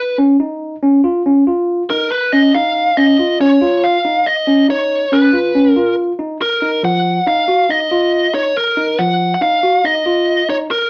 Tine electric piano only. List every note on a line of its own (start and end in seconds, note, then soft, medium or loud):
0.18 0.36 C#4 medium
0.40 0.75 D#4 medium
0.83 1.00 C#4 medium
1.04 1.22 F4 medium
1.26 1.43 C#4 medium
1.47 1.82 F4 medium
1.90 2.08 D#4 medium
2.33 2.51 C#4 medium
2.55 2.90 D#4 medium
2.97 3.15 C#4 medium
3.19 3.36 F4 medium
3.40 3.58 C#4 medium
3.61 3.97 F4 medium
4.05 4.22 D#4 medium
4.47 4.65 C#4 medium
4.69 5.04 D#4 medium
5.12 5.30 C#4 medium
5.33 5.51 F4 medium
5.55 5.72 C#4 medium
5.76 6.11 F4 medium
6.19 6.37 D#4 medium
6.62 6.80 D#4 medium
6.83 7.19 F3 medium
7.27 7.44 D#4 medium
7.48 7.66 F#4 medium
7.69 7.87 D#4 medium
7.91 8.26 F4 medium
8.34 8.51 D#4 medium
8.77 8.95 D#4 medium
8.99 9.34 F3 medium
9.41 9.59 D#4 medium
9.63 9.81 F#4 medium
9.85 10.02 D#4 medium
10.06 10.41 F4 medium
10.49 10.66 D#4 medium